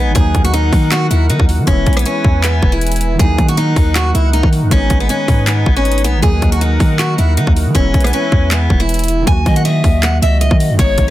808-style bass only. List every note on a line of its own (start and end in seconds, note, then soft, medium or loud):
0.07 0.15 G#1 loud
0.16 0.34 D#2 loud
0.35 0.71 D#2 loud
0.73 1.09 D#3 loud
1.11 1.31 D#2 loud
1.30 1.39 D#3 loud
1.40 1.60 D#2 loud
1.59 1.67 D#3 loud
1.67 1.86 E1 loud
1.87 2.05 B1 loud
2.25 2.61 E2 loud
2.63 3.17 E1 loud
3.19 3.38 D#2 loud
3.38 3.75 D#3 loud
3.76 4.13 D#2 loud
4.14 4.42 C#2 loud
4.43 4.64 D#3 loud
4.62 4.71 F#2 loud
4.71 4.90 G#1 loud
4.90 5.09 G#1 loud
5.28 5.65 G#2 loud
5.66 6.06 G#1 loud
6.04 6.16 B1 loud
6.14 6.23 G#1 loud
6.23 6.41 D#2 loud
6.42 6.79 D#2 loud
6.80 7.17 D#3 loud
7.18 7.39 D#2 loud
7.37 7.47 D#3 medium
7.47 7.68 D#2 loud
7.66 7.75 D#3 loud
7.75 7.93 E1 loud
7.94 8.12 B1 loud
8.32 8.69 E2 loud
8.70 9.25 E1 loud
9.27 9.45 D#2 loud
9.46 9.83 D#3 loud
9.84 10.20 D#2 loud
10.22 10.50 C#2 loud
10.51 10.72 D#3 loud
10.70 10.79 F#2 loud
10.79 10.97 G#1 loud
10.98 11.10 G#1 loud